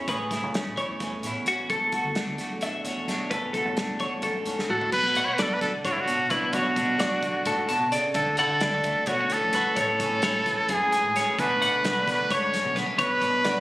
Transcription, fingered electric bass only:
0.07 0.43 A1 medium
0.43 0.61 C#2 medium
0.66 0.75 A1 medium
0.90 1.17 E2 medium
1.23 1.33 A2 medium
1.45 1.69 A1 medium
1.69 1.97 E1 medium
2.04 2.13 D2 medium
2.26 2.36 D2 medium
2.50 2.78 B1 medium
2.84 2.94 E1 medium
3.07 3.17 B1 medium
3.31 3.65 E1 medium
3.65 3.84 A1 medium
3.89 3.98 E1 medium
4.11 4.39 B1 medium
4.46 4.55 E2 medium
4.69 4.88 A1 medium
4.93 5.16 B1 medium
5.15 5.34 B2 medium
5.39 5.57 B1 loud
5.61 5.71 B1 loud
5.85 6.04 G#2 medium
6.18 6.37 B2 medium
6.53 6.78 B1 medium
6.76 6.95 B2 medium
6.99 7.18 B1 medium
7.23 7.32 B1 loud
7.46 7.65 G#2 medium
7.80 7.99 B2 medium
8.14 8.40 D2 medium
8.39 8.57 D3 medium
8.61 8.80 D2 loud
8.84 8.93 D2 loud
9.07 9.25 B2 medium
9.44 9.62 A#1 medium
9.77 10.01 A1 medium
9.99 10.18 A2 medium
10.22 10.41 A1 medium
10.46 10.55 A1 loud
10.69 10.87 F#2 medium
11.03 11.21 A1 medium
11.38 11.63 B1 medium
11.61 11.79 B2 medium
11.84 12.02 B1 loud
12.07 12.16 B1 medium
12.30 12.48 G#2 medium
12.65 12.83 B2 medium
12.99 13.23 B1 medium
13.22 13.40 B2 medium
13.44 13.60 B1 loud

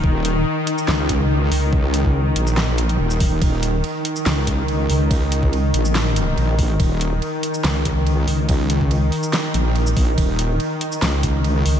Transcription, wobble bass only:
0.04 0.44 D#1 loud
0.88 1.50 C#2 loud
1.51 2.34 C#2 loud
2.36 2.98 A#1 loud
2.99 3.40 D#1 loud
3.42 3.82 D#1 loud
4.26 4.88 C#2 loud
4.89 5.72 C#2 loud
5.74 6.36 A#1 loud
6.37 6.78 A#1 loud
6.80 7.20 D#1 loud
7.64 8.26 C#2 loud
8.28 9.11 C#2 loud
9.54 9.95 A#1 medium
9.97 10.16 A#1 loud
10.18 10.58 D#1 loud
11.02 11.64 C#2 loud
11.66 11.80 C#2 loud

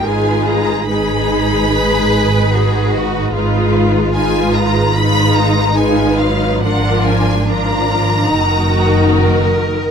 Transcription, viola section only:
0.07 0.88 G#3 medium
0.07 0.89 D#4 medium
0.89 3.31 G#3 medium
0.89 3.31 D#4 medium
3.35 4.15 G#3 medium
3.35 4.15 D#4 medium
4.17 4.96 G#3 medium
4.17 4.97 D#4 medium
4.97 5.77 G#3 medium
4.97 5.77 D#4 medium
5.78 6.20 G#3 medium
5.78 6.61 D#4 medium
6.21 6.62 F#3 medium
6.61 7.44 F3 medium
6.61 7.44 D4 medium
7.45 8.27 F3 medium
7.45 8.27 D4 medium
8.28 9.91 D#3 medium
8.28 9.91 D#4 medium

